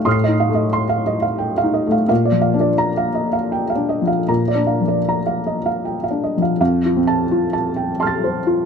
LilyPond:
<<
  \new Staff \with { instrumentName = "Felt piano" } { \time 3/4 \key bes \major \tempo 4 = 85 << { <ees''' f''' c''''>2. | r4 bes''8 r4. | r2. | \tuplet 3/2 { r4 a''8 } r4 <c''' f''' a'''>4 | } \\ { <f'' c'''>16 ees''16 f''16 ees''16 c'''16 f''16 ees''16 f''16 g''16 f''16 ees''16 f''16 | f''16 d''16 f''16 d''8 f''16 ees''16 f''16 g''16 f''16 ees''16 f''16 | bes''16 d''16 f''16 d''16 bes''16 f''16 ees''16 f''16 g''16 f''16 ees''16 f''16 | \tuplet 3/2 { f''8 f'4 f'8 a''8 g''8 a''8 c''8 f'8 } | } >> }
  \new Staff \with { instrumentName = "Felt piano" } { \time 3/4 \key bes \major \tuplet 3/2 { <a, a>8 ees'8 a8 } r4 \tuplet 3/2 { r8 ees'8 a8 } | \tuplet 3/2 { bes,8 f8 d'8 } r4 \tuplet 3/2 { r8 d'8 f8 } | \tuplet 3/2 { bes,8 d'8 f8 } r4 \tuplet 3/2 { r8 d'8 f8 } | f,8 c'4 r4. | }
>>